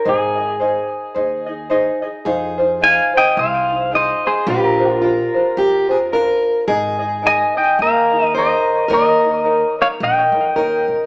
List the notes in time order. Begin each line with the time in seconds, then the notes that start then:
0.05 G#1 D#4 G#4 C5 D#5
0.09 G#4
0.37 D#4 G#4 D#5
0.60 D#4 G#4 C5 D#5
1.14 D#2 D#4 G#4 C5 D#5
1.46 D#4 G#4 D#5
1.70 D#4 G#4 C5 D#5
2.02 D#4 G#4 D#5
2.25 F2 D#4 F4 G#4 C5
2.58 D#4 F4 C5
2.81 D#4 F4 G#4 C5 G#5
2.85 F5
3.14 D#4 F4 C5 G5
3.18 D#5
3.37 C2 C5 F5
3.68 D#4 F4 C5
3.91 D#4 F4 G#4 C5 D#5
3.96 C5
4.27 G#4 C5
4.47 A#1 D4 F4 G4 A#4 C5
4.79 D4 F4 C5
4.92 F4
5.02 D4 F4 A#4 C5
5.34 D4 F4 C5
5.57 F2 G4
5.89 D4 F4 G#4 C5
6.12 D4 F4 A#4 C5
6.67 G#1 D#4 G#4 A#4 D#5
6.99 D#4 G#4 D#5
7.22 D#4 G#4 A#4 D#5
7.27 D#5 G#5
7.55 D#4 G#4 D#5 G5
7.79 D#2 A#4 F5
8.10 D#4 G#4 D#5
8.25 D#5
8.33 D#4 G#4 A#4 C5 D#5
8.38 A#4 D#5
8.88 D#2 D#4 G4 A#4 C#5
8.93 A#4 D#5
9.22 D#4 A#4 C#5
9.44 D#4 G4 A#4 C#5
9.78 D#4 A#4 C#5
9.82 F5
10.00 A#1 D#5 G5
10.32 F2 D#4 A#4 C#5
10.56 D#2 D#4 G4 A#4 C#5
10.88 C#2